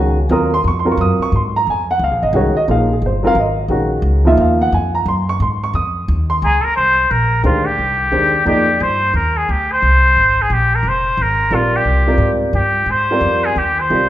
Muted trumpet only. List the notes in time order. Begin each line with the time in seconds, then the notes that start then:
6.44 G#4
6.61 A4 A#4
6.76 C5
7.11 A#4
7.45 F4
7.66 G4
8.48 G4
8.83 C5
9.15 A#4
9.37 G#4
9.51 G4
9.72 C5
10.42 G#4
10.53 G4
10.75 A#4
10.89 C5
11.22 A#4
11.55 F4
11.76 G4
12.55 G4
12.90 C5
13.45 G#4
13.58 G4
13.80 C5